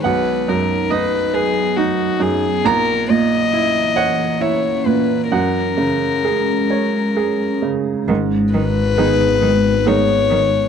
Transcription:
<<
  \new Staff \with { instrumentName = "Violin" } { \time 3/4 \key gis \minor \tempo 4 = 68 b'8 ais'8 b'8 gis'8 fis'8 gis'8 | ais'8 dis''4. cis''8 b'8 | ais'2~ ais'8 r8 | r8 b'4. cis''4 | }
  \new Staff \with { instrumentName = "Upright piano" } { \time 3/4 \key gis \minor << { fis''4 dis''2 | ais''4. fis''8 e''4 | fis''2~ fis''8 r8 | r2. | } \\ { b,,8 fis,8 dis'8 b'8 dis'8 fis,8 | ais,,8 ais,8 e'8 cis''8 e'8 ais,8 | fis,8 cis8 gis'8 cis''8 gis'8 cis8 | gis,4 <b dis' gis'>4 <b dis' gis'>4 | } >> }
  \new Staff \with { instrumentName = "Ambient pad" } { \time 3/4 \key gis \minor << { <b dis'>2. | <cis' ais''>2.~ | <cis' ais''>2. | <dis' b'>2. | } \\ { fis2. | e2. | gis2. | gis2. | } >> }
  \new Staff \with { instrumentName = "Cello" } { \clef bass \time 3/4 \key gis \minor r2. | r2. | r2. | dis8 dis8 dis8 dis8 dis8 dis8 | }
  \new Staff \with { instrumentName = "Double bass" } { \clef bass \time 3/4 \key gis \minor r2. | r2. | r2. | gis,,2. | }
>>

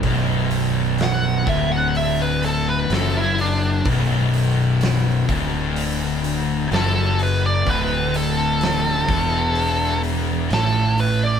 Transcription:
<<
  \new Staff \with { instrumentName = "Lead electric guitar" } { \time 4/4 \key b \minor \tempo 4 = 63 r4 fis''8 e''16 fis''16 e''16 b'16 a'16 b'16 a'16 e'16 d'8 | r2. a'8 b'16 d''16 | b'8 a'2 r8 a'8 b'16 d''16 | }
  \new Staff \with { instrumentName = "Distorted electric guitar" } { \clef bass \time 4/4 \key b \minor b,,4. d,4. fis,4 | b,,4. d,4. fis,4 | d,4. e,4. a,4 | }
  \new Staff \with { instrumentName = "Distorted electric guitar" } { \clef bass \time 4/4 \key b \minor b,,4. d,4. fis,4 | b,,4. d,4. fis,4 | d,4. e,4. a,4 | }
  \new Staff \with { instrumentName = "Distorted electric guitar" } { \clef bass \time 4/4 \key b \minor b,,4. d,4. fis,4 | b,,4. d,4. fis,4 | d,4. e,4. a,4 | }
  \new Staff \with { instrumentName = "Fingered electric bass" } { \clef bass \time 4/4 \key b \minor b,,,4. d,,4. fis,,4 | b,,,4. d,,4. fis,,4 | d,,4. e,,4. a,,4 | }
  \new DrumStaff \with { instrumentName = "Drums" } \drummode { \time 4/4 <hho bd>8 hho8 <hho sn>8 <hho bd>8 hho8 hho8 <hho sn>8 hho8 | <hho bd>8 hho8 <hho sn>8 <hho bd>8 hho8 hho8 <hho sn>8 hho8 | <hho bd>8 hho8 <hho sn>8 <hho bd>8 hho8 hho8 <hho sn>8 hho8 | }
>>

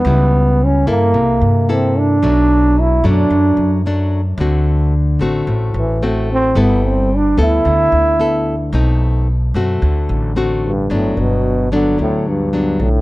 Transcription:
<<
  \new Staff \with { instrumentName = "Nylon-string guitar" } { \time 4/4 \key d \mixolydian \tempo 4 = 111 << { <g b e'>4. <ais e' a'>4. <ais e' a'>4 | <fis a d'>4. <fis a d'>4. <fis a d'>8 r8 | <a c' fis'>4 r8 <a c' fis'>4. <a c' fis'>4 | <b e' a'>4 r8 <b e' a'>4. <b e' a'>8 r8 |
<a c' dis'>4 r8 <a c' fis'>4. <a c' fis'>8 r8 | \key g \major <fis b d'>4. <fis b d'>4. <fis b d'>8 r8 | } \\ { cis2 c2 | b,2 fis,2 | d2 a,2 | g2 d2 |
b,2 d2 | g,2 d2 | } >> }
  \new Staff \with { instrumentName = "Trombone" } { \time 4/4 \key d \mixolydian b4 cis'8 ais4. c'8 d'8~ | d'4 e'8 d'4. r4 | r2 r8 e8 a8 c'8 | b8 c'8 d'8 e'2~ e'8 |
r2. r8 g,8 | \key g \major a,8 b,4 d8 a,8 g,4 a,8 | }
  \new Staff \with { instrumentName = "Upright bass" } { \clef bass \time 4/4 \key d \mixolydian cis,4. g,8 c,8 g,4. | b,,4. fis,8 fis,8 fis,4. | d,4. a,,8 a,,8 a,,4. | g,,4. d,8 d,8 d,4. |
b,,4. fis,8 d,8 a,,4. | \key g \major g,,8 g,,4. d,4. b,,8 | }
>>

